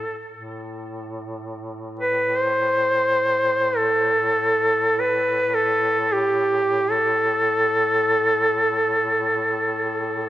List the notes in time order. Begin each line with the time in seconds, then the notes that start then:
Already playing: A2 A4
0.33 A2
2.00 B4
2.38 C5
3.77 A4
5.00 B4
5.55 A4
6.13 G4
6.92 A4